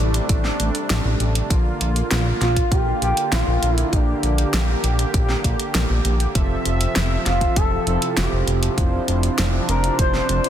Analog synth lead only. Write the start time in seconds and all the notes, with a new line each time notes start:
2.41 F4
2.72 G4
3.02 G4
3.33 F4
3.73 E4
3.93 D4
7.26 F4
7.56 A4
7.87 A4
8.17 G4
9.69 A#4
9.99 C5
10.30 C5